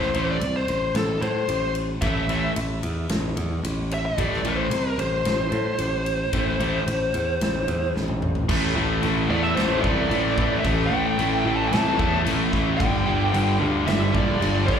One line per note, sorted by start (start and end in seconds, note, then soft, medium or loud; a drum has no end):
0.00 0.10 A1 medium
0.00 0.29 C5 medium
0.00 snare soft
0.14 0.37 A1 medium
0.14 0.36 A2 medium
0.14 0.36 E3 medium
0.14 0.36 A3 medium
0.14 ride medium
0.30 0.57 D5 medium
0.40 0.63 C2 medium
0.40 ride medium
0.56 0.93 C5 medium
0.68 0.91 A1 medium
0.68 ride medium
0.95 1.17 A1 medium
0.95 1.21 A4 medium
0.95 snare loud
0.95 ride medium
1.22 1.44 A2 medium
1.22 1.72 C5 medium
1.22 ride medium
1.48 1.94 A1 medium
1.48 ride medium
1.75 ride medium
2.02 2.47 A1 medium
2.02 2.24 A2 medium
2.02 2.24 E3 medium
2.02 2.24 A3 medium
2.02 2.52 E5 loud
2.02 kick loud
2.02 ride medium
2.29 2.51 A2 medium
2.29 2.51 E3 medium
2.29 2.51 A3 medium
2.29 ride medium
2.56 2.79 A1 medium
2.56 ride medium
2.83 3.06 E2 medium
2.83 ride medium
3.09 3.33 A1 medium
3.09 snare loud
3.09 ride medium
3.37 3.60 E2 medium
3.37 ride medium
3.63 4.09 A1 medium
3.63 ride medium
3.91 4.05 E5 loud
3.91 ride medium
4.06 4.47 D5 medium
4.18 4.41 A1 medium
4.18 4.40 A2 medium
4.18 4.40 E3 medium
4.18 4.40 A3 medium
4.18 kick medium
4.18 ride medium
4.33 snare soft
4.44 4.67 A1 medium
4.44 4.66 A2 medium
4.44 4.66 E3 medium
4.44 4.67 A3 medium
4.44 4.99 C5 medium
4.44 ride medium
4.71 4.94 C2 medium
4.71 ride medium
4.98 5.21 A1 medium
4.98 7.92 C5 medium
4.98 ride medium
5.25 5.48 A1 medium
5.25 snare loud
5.25 ride medium
5.52 5.75 A2 medium
5.52 ride medium
5.78 6.24 A1 medium
5.78 ride medium
6.06 ride medium
6.33 6.79 A1 medium
6.33 6.55 A2 medium
6.33 6.55 E3 medium
6.33 6.55 A3 medium
6.33 kick loud
6.33 ride medium
6.60 6.82 A2 medium
6.60 6.82 E3 medium
6.60 6.82 A3 medium
6.60 ride medium
6.87 7.10 A1 medium
6.87 ride medium
7.14 7.37 E2 medium
7.14 ride medium
7.41 7.64 A1 medium
7.41 snare loud
7.41 ride medium
7.68 7.91 E2 medium
7.68 ride medium
7.96 8.41 A1 medium
7.96 snare medium
8.08 high tom medium
8.22 mid tom medium
8.35 floor tom medium
8.49 8.71 A1 loud
8.49 8.75 A2 medium
8.49 8.75 E3 loud
8.49 8.75 A3 loud
8.49 kick loud
8.49 crash loud
8.49 crash medium
8.75 8.99 A1 medium
8.75 9.02 A2 medium
8.75 9.02 E3 medium
8.75 9.03 A3 medium
9.02 9.25 A1 medium
9.02 9.29 A2 medium
9.02 9.29 E3 medium
9.02 9.30 A3 medium
9.02 crash medium
9.29 9.52 E2 medium
9.29 9.55 A2 medium
9.29 9.56 E3 medium
9.29 9.56 A3 medium
9.29 9.43 D5 medium
9.43 9.57 E5 medium
9.55 9.79 A1 loud
9.55 9.82 A2 medium
9.55 9.83 E3 loud
9.55 9.83 A3 medium
9.55 9.81 C5 medium
9.55 snare loud
9.55 crash medium
9.81 10.06 C2 medium
9.81 10.10 A2 medium
9.81 10.09 E3 loud
9.81 10.10 A3 loud
9.81 10.59 D5 medium
9.81 kick medium
10.11 10.33 A1 medium
10.11 10.37 A2 medium
10.11 10.37 E3 loud
10.11 10.37 A3 loud
10.11 crash medium
10.38 10.60 A1 medium
10.38 10.63 A2 medium
10.38 10.64 E3 medium
10.38 10.64 A3 medium
10.38 kick medium
10.60 10.68 E5 loud
10.64 10.87 A1 loud
10.64 10.90 A2 loud
10.64 10.91 E3 loud
10.64 10.92 A3 loud
10.64 kick loud
10.64 crash medium
10.87 11.56 G5 loud
10.92 11.14 A1 medium
10.92 11.18 A2 medium
10.92 11.18 E3 medium
10.92 11.18 A3 medium
11.19 11.41 A1 medium
11.19 11.45 A2 medium
11.19 11.45 E3 loud
11.19 11.46 A3 loud
11.19 crash medium
11.45 11.67 A1 medium
11.45 11.71 A2 medium
11.45 11.71 E3 medium
11.45 11.71 A3 loud
11.56 11.67 A5 loud
11.68 11.94 C2 medium
11.68 11.97 A2 medium
11.68 12.20 A5 loud
11.72 11.97 E3 loud
11.72 11.98 A3 loud
11.72 snare loud
11.72 crash medium
11.98 12.22 E2 medium
11.98 12.23 A2 medium
11.98 12.23 E3 medium
11.98 12.24 A3 loud
11.98 kick medium
12.24 12.82 A1 medium
12.24 12.51 A2 loud
12.24 12.51 E3 loud
12.24 12.52 A3 loud
12.24 crash medium
12.52 12.78 A2 medium
12.52 12.78 E3 medium
12.52 12.78 A3 medium
12.52 kick medium
12.52 snare soft
12.77 13.02 G1 loud
12.77 13.05 G2 medium
12.77 13.04 D3 loud
12.77 13.06 G3 loud
12.77 13.56 G5 loud
12.77 kick loud
12.77 crash medium
13.05 13.30 G1 medium
13.05 13.32 G2 medium
13.05 13.31 D3 medium
13.05 13.32 G3 medium
13.32 13.56 G1 loud
13.32 13.58 G2 loud
13.32 13.58 D3 loud
13.32 13.59 G3 loud
13.32 crash medium
13.58 13.83 D2 medium
13.58 13.84 G2 medium
13.58 13.85 D3 medium
13.58 13.85 G3 loud
13.85 14.10 G1 medium
13.85 14.10 G2 medium
13.85 14.11 D3 medium
13.85 14.11 G3 loud
13.85 14.14 E5 loud
13.85 snare loud
13.85 crash medium
14.12 14.37 A#1 medium
14.12 14.39 G2 medium
14.12 14.39 D3 medium
14.12 14.39 G3 medium
14.12 14.66 D5 loud
14.12 kick medium
14.40 14.63 G1 medium
14.40 14.65 G2 loud
14.40 14.64 D3 loud
14.40 14.65 G3 loud
14.40 crash medium
14.65 14.79 G1 medium
14.65 14.79 G2 medium
14.65 14.79 D3 medium
14.65 14.79 G3 medium
14.65 14.79 D5 medium
14.65 kick medium
14.70 snare soft